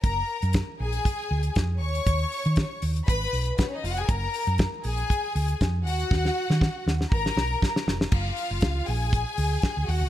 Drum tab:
CC |----------------|----------------|----------------|----------------|
HH |x--xx--xx--xx--x|x-oxx-oxx-oxx-ox|x-oxx-oxx-oxx-ox|----------------|
SD |----o-------o---|----o-------o---|----o-------o---|oo-oo-oo-oo-oooo|
BD |o---o---o---o---|o---o---o---o---|o---o---o---o---|o---o---o---o---|

CC |x---------------|
HH |--o-x-o-x-o-x-o-|
SD |----o-------o---|
BD |o---o---o---o---|